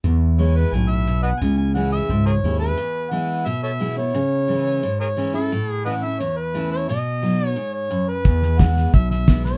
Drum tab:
HH |--------|--------|--------|--------|
SD |--------|--------|--------|--------|
BD |--------|--------|--------|--------|

HH |--------|--------|--p---p-|
SD |--------|--------|oooooooo|
BD |--------|--------|o-o-o-o-|